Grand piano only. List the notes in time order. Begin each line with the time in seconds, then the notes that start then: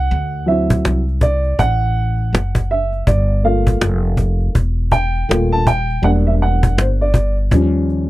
Already playing: F#5
0.46 F#3 C4 E4 E5
1.22 D5
1.59 F#5
2.71 E5
3.07 D5
3.44 A3 A#3 F4 F5
4.92 G5
5.29 A3 A#3 F4
5.52 A5
5.67 G5
6.02 G3 A#3 D4 F#5
6.27 E5
6.42 F#5
6.80 C5
7.01 D5
7.51 F3 G3 C#4